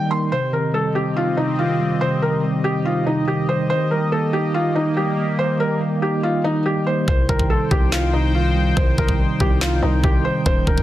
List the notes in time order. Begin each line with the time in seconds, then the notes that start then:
Already playing: D#3 G3 A#3 D#4 A#4 D#5 G5
0.11 A#3 C6
0.32 C3 C4 G4 C5 D#5
0.52 D#3 A#4
0.73 G3 A4
0.95 C4 G4
1.15 D#4 F4
1.37 C3 D#4
1.59 D#3 F4
1.79 G3
2.01 C3 C5
2.21 D#3 A#4
2.44 G3
2.64 C4 G4
2.85 D#4 F4
3.06 C3 D#4
3.28 D#3 G4
3.49 G3 C5
3.70 D#3 A#3 C5
3.91 G3 A#4
4.12 A#3 A4
4.33 D#4 G4
4.54 F4 D#5
4.75 D#3 D#4
4.97 G3 G4
5.17 A#3
5.39 D#3 C5
5.60 G3 A#4
5.80 A#3
6.01 D#4 G4
6.23 F4 D#5
6.44 D#3 D#4
6.65 G3 G4
6.87 A#3 C5
7.08 C2 D#4 C5 G5, kick
7.28 C2 D#3 A#4, kick
7.39 kick
7.49 G3 A4
7.71 C2 C4 G4, kick
7.91 D#4 F4, snare, clap
8.13 C3 D#4
8.35 D#3 F4
8.55 G3
8.77 C2 C3 C5, kick
8.97 C2 D#3 A#4, kick
9.09 kick
9.20 G3
9.40 C2 C4 G4, kick
9.61 D#4 F4, snare, clap
9.82 C2 C3 D#4
10.04 C2 D#3 G4, kick
10.25 G3 C5
10.46 D#1 D#3 A#4 C5, kick
10.67 D#1 G3 A#4, kick
10.78 kick